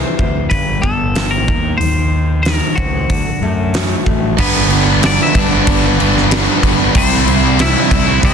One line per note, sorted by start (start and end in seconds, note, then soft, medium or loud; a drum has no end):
0.00 0.51 C3 medium
0.00 0.51 E3 medium
0.00 0.83 G3 medium
0.00 1.15 G4 medium
0.00 0.49 C5 medium
0.18 0.46 D2 medium
0.18 0.51 E4 medium
0.18 kick medium
0.50 0.78 G1 medium
0.50 1.49 G2 medium
0.50 0.84 B4 medium
0.50 kick medium
0.50 open hi-hat soft
0.82 1.48 G1 medium
0.82 1.48 B3 medium
0.82 1.33 A4 medium
0.82 kick medium
1.15 1.48 G4 medium
1.15 snare loud
1.15 open hi-hat soft
1.31 1.77 A#4 medium
1.48 1.75 D#2 medium
1.48 1.79 D#3 medium
1.48 kick medium
1.78 2.60 D#2 medium
1.78 2.44 D#3 medium
1.78 2.42 C5 medium
1.78 open hi-hat soft
2.43 3.10 D#3 medium
2.43 2.77 A#4 medium
2.43 snare medium
2.43 open hi-hat soft
2.76 3.04 C#2 medium
2.76 3.10 C4 soft
2.76 4.01 F#4 medium
2.76 kick medium
3.10 3.23 D2 medium
3.10 4.38 D3 medium
3.10 kick medium
3.10 open hi-hat soft
3.41 3.94 F#2 medium
3.41 4.05 A3 medium
3.74 4.39 F#4 medium
3.74 snare loud
3.74 open hi-hat soft
4.06 4.33 A1 medium
4.06 4.38 A3 medium
4.06 kick medium
4.38 5.18 G1 loud
4.38 5.00 G2 medium
4.38 4.69 D3 medium
4.38 4.70 G3 loud
4.38 4.70 B3 loud
4.38 4.99 B3 medium
4.38 4.71 D4 loud
4.38 5.05 B4 medium
4.38 kick loud
4.38 crash loud
4.38 crash medium
4.55 snare soft
4.70 5.00 D3 medium
4.70 4.87 G3 medium
4.70 4.86 B3 medium
4.70 4.84 D4 medium
4.70 crash medium
4.85 5.02 G3 medium
4.85 5.01 B3 medium
4.85 5.02 D4 medium
5.01 5.66 G2 medium
5.01 5.33 D3 loud
5.01 5.33 G3 medium
5.01 5.34 B3 loud
5.01 5.35 D4 medium
5.01 5.19 D4 medium
5.01 snare loud
5.01 crash medium
5.06 5.21 D5 loud
5.18 5.34 G3 medium
5.18 5.34 B3 medium
5.18 5.34 D4 medium
5.18 5.35 E4 medium
5.23 5.39 E5 loud
5.34 5.61 G1 loud
5.34 5.82 D3 medium
5.34 5.51 G3 medium
5.34 5.50 B3 medium
5.34 5.49 D4 medium
5.34 5.96 D4 medium
5.34 muted distorted electric guitar stroke soft
5.34 kick loud
5.34 crash medium
5.39 6.01 D5 loud
5.50 5.97 G3 medium
5.50 5.98 B3 medium
5.50 5.99 D4 medium
5.67 6.46 G1 medium
5.67 kick loud
5.67 crash medium
5.83 5.98 G3 medium
5.83 5.99 B3 medium
5.83 6.00 D4 medium
5.98 6.29 D3 medium
5.98 6.14 G3 medium
5.98 6.14 B3 medium
5.98 6.13 D4 medium
5.98 crash medium
6.14 6.30 G3 medium
6.14 6.30 B3 medium
6.14 6.31 D4 medium
6.14 snare soft
6.30 6.78 G2 medium
6.30 6.61 D3 medium
6.30 6.47 G3 loud
6.30 6.46 B3 loud
6.30 6.45 D4 loud
6.30 snare loud
6.30 crash medium
6.46 6.61 G3 medium
6.46 6.62 B3 medium
6.46 6.63 D4 medium
6.62 6.89 G1 medium
6.62 6.93 D3 medium
6.62 6.79 G3 medium
6.62 6.79 B3 medium
6.62 6.77 D4 medium
6.62 kick medium
6.62 crash medium
6.79 6.94 G3 medium
6.79 6.93 B3 medium
6.79 6.93 D4 medium
6.94 7.74 C2 loud
6.94 7.26 C3 medium
6.94 7.26 G3 loud
6.94 7.27 C4 loud
6.94 7.56 C4 medium
6.94 7.27 E4 loud
6.94 7.61 C5 loud
6.94 kick loud
6.94 crash loud
7.13 snare soft
7.27 7.58 C3 medium
7.27 7.43 G3 medium
7.27 7.42 C4 medium
7.27 7.42 E4 medium
7.27 crash medium
7.43 7.58 G3 medium
7.43 7.59 C4 medium
7.43 7.59 E4 medium
7.59 7.90 C3 medium
7.59 7.90 G3 medium
7.59 7.91 C4 loud
7.59 7.91 E4 medium
7.59 8.20 E4 medium
7.59 8.24 E5 loud
7.59 snare loud
7.59 crash medium
7.73 7.90 G3 medium
7.73 7.90 C4 medium
7.73 7.90 E4 medium
7.91 8.17 C2 medium
7.91 8.34 C3 medium
7.91 8.08 G3 medium
7.91 8.07 C4 medium
7.91 8.06 E4 medium
7.91 muted distorted electric guitar stroke medium
7.91 kick medium
7.91 crash medium
8.07 8.34 G3 medium
8.07 8.34 C4 medium
8.07 8.34 E4 medium
8.23 8.34 C2 loud
8.23 8.34 E4 medium
8.23 8.34 E5 loud
8.23 kick loud
8.23 crash medium